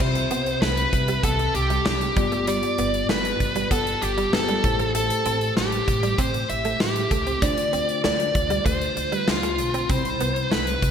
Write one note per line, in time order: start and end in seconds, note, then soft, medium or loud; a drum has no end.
0.00 0.22 C2 medium
0.00 0.89 C3 medium
0.00 0.12 C4 medium
0.00 2.12 C4 medium
0.00 2.12 G4 medium
0.00 0.62 C5 medium
0.00 2.13 E5 medium
0.00 2.13 B5 medium
0.00 kick loud
0.00 crash medium
0.15 muted clean electric guitar stroke soft
0.15 closed hi-hat medium
0.31 0.53 C2 medium
0.31 0.43 B3 medium
0.31 closed hi-hat medium
0.46 closed hi-hat soft
0.62 0.84 C2 medium
0.62 0.74 A3 medium
0.62 1.24 B4 medium
0.62 snare medium
0.77 closed hi-hat medium
0.93 1.15 C2 medium
0.93 muted clean electric guitar stroke soft
0.93 kick medium
0.93 closed hi-hat medium
1.08 1.20 G3 medium
1.08 closed hi-hat medium
1.23 1.46 C2 medium
1.23 1.36 B3 medium
1.23 1.53 A4 medium
1.23 kick medium
1.23 closed hi-hat medium
1.39 muted clean electric guitar stroke soft
1.39 closed hi-hat soft
1.55 1.77 C2 medium
1.55 1.85 G4 medium
1.55 closed hi-hat medium
1.70 1.82 G3 medium
1.70 closed hi-hat soft
1.86 2.08 C2 medium
1.86 2.49 G4 medium
1.86 muted clean electric guitar stroke soft
1.86 snare loud
2.01 closed hi-hat soft
2.15 2.61 G1 medium
2.15 3.05 G2 medium
2.15 2.29 G3 medium
2.15 4.28 B3 medium
2.15 4.29 F4 medium
2.15 4.29 G4 medium
2.15 4.30 D5 medium
2.15 kick loud
2.15 closed hi-hat medium
2.32 2.44 A3 medium
2.32 closed hi-hat soft
2.47 2.60 G3 medium
2.47 3.06 D5 medium
2.47 closed hi-hat medium
2.63 muted clean electric guitar stroke soft
2.63 closed hi-hat medium
2.78 3.01 G1 medium
2.78 2.91 B3 medium
2.78 closed hi-hat medium
2.94 closed hi-hat soft
3.09 3.32 G1 medium
3.09 3.21 A3 medium
3.09 3.67 B4 medium
3.09 snare medium
3.25 muted clean electric guitar stroke soft
3.25 closed hi-hat medium
3.40 3.63 G1 medium
3.40 kick medium
3.40 closed hi-hat medium
3.56 3.68 G3 medium
3.56 closed hi-hat medium
3.71 3.93 G1 medium
3.71 3.83 B3 medium
3.71 4.03 A4 medium
3.71 kick medium
3.71 closed hi-hat medium
3.87 closed hi-hat soft
4.02 4.24 G1 medium
4.02 4.34 G4 medium
4.02 muted clean electric guitar stroke soft
4.02 closed hi-hat medium
4.18 4.30 G3 medium
4.18 closed hi-hat soft
4.33 4.55 G1 medium
4.33 4.64 B3 soft
4.33 4.64 F4 soft
4.33 4.63 G4 soft
4.33 4.91 A4 medium
4.33 4.64 B4 soft
4.33 snare loud
4.48 4.60 G3 medium
4.48 closed hi-hat soft
4.63 5.08 A1 loud
4.63 5.53 A2 medium
4.63 7.07 A3 medium
4.63 7.07 E4 medium
4.63 7.08 G4 medium
4.63 7.08 C5 medium
4.63 muted clean electric guitar stroke soft
4.63 kick loud
4.63 closed hi-hat medium
4.79 4.91 A3 medium
4.79 closed hi-hat soft
4.95 5.07 A3 medium
4.95 5.53 A4 medium
4.95 closed hi-hat medium
5.10 muted clean electric guitar stroke soft
5.10 closed hi-hat medium
5.26 5.48 A1 medium
5.26 5.38 C4 medium
5.26 closed hi-hat medium
5.41 closed hi-hat soft
5.57 5.79 A1 medium
5.57 5.69 A3 medium
5.57 6.20 G4 medium
5.57 snare medium
5.72 closed hi-hat soft
5.88 6.10 A1 medium
5.88 muted clean electric guitar stroke soft
5.88 kick medium
5.88 closed hi-hat medium
6.03 6.15 G3 medium
6.03 closed hi-hat medium
6.18 6.41 A1 medium
6.18 6.31 C4 medium
6.18 6.47 C5 medium
6.18 kick medium
6.18 closed hi-hat medium
6.34 muted clean electric guitar stroke soft
6.34 closed hi-hat soft
6.49 6.72 A1 medium
6.49 6.78 E5 medium
6.49 closed hi-hat medium
6.65 6.77 A3 medium
6.65 closed hi-hat soft
6.80 7.03 A1 medium
6.80 7.44 G4 medium
6.80 muted clean electric guitar stroke soft
6.80 snare loud
6.96 closed hi-hat soft
7.11 7.33 C#2 medium
7.11 7.23 A3 medium
7.11 kick medium
7.11 closed hi-hat medium
7.27 7.39 C4 medium
7.27 closed hi-hat soft
7.41 7.64 D2 medium
7.41 8.31 D3 medium
7.41 9.85 A3 medium
7.41 9.86 D4 medium
7.41 7.54 D4 medium
7.41 9.86 F4 medium
7.41 9.86 C5 medium
7.41 8.00 D5 medium
7.41 kick loud
7.41 closed hi-hat medium
7.58 muted clean electric guitar stroke soft
7.58 closed hi-hat medium
7.73 7.96 D2 medium
7.73 7.85 C4 medium
7.73 closed hi-hat medium
7.89 closed hi-hat soft
8.04 8.27 D2 medium
8.04 8.16 A3 medium
8.04 8.66 D5 medium
8.04 snare medium
8.19 muted clean electric guitar stroke soft
8.19 closed hi-hat soft
8.35 8.57 D2 medium
8.35 kick medium
8.35 closed hi-hat medium
8.50 8.62 G3 medium
8.50 closed hi-hat medium
8.66 8.88 D2 medium
8.66 8.78 A3 medium
8.66 9.11 C5 medium
8.66 kick medium
8.66 closed hi-hat medium
8.82 closed hi-hat medium
8.97 9.19 D2 medium
8.97 muted clean electric guitar stroke soft
8.97 closed hi-hat medium
9.11 9.24 G3 medium
9.11 9.30 B4 medium
9.11 closed hi-hat soft
9.28 9.59 D2 medium
9.28 9.92 F4 medium
9.28 snare loud
9.43 9.55 A3 medium
9.43 closed hi-hat soft
9.58 9.81 B1 medium
9.58 muted clean electric guitar stroke soft
9.58 closed hi-hat medium
9.74 9.86 C4 medium
9.74 closed hi-hat soft
9.88 10.12 C2 medium
9.88 10.78 C3 medium
9.88 10.91 G3 medium
9.88 10.91 C4 medium
9.88 10.02 C4 medium
9.88 10.91 E4 medium
9.88 10.52 C5 medium
9.88 10.91 B5 medium
9.88 kick loud
9.88 closed hi-hat medium
10.05 muted clean electric guitar stroke soft
10.05 closed hi-hat medium
10.20 10.43 C2 medium
10.20 10.33 B3 medium
10.20 closed hi-hat medium
10.36 closed hi-hat soft
10.51 10.74 C2 medium
10.51 10.64 A3 medium
10.51 10.91 B4 medium
10.51 snare medium
10.67 closed hi-hat soft
10.82 10.91 C2 medium
10.82 muted clean electric guitar stroke soft
10.82 kick medium
10.82 closed hi-hat medium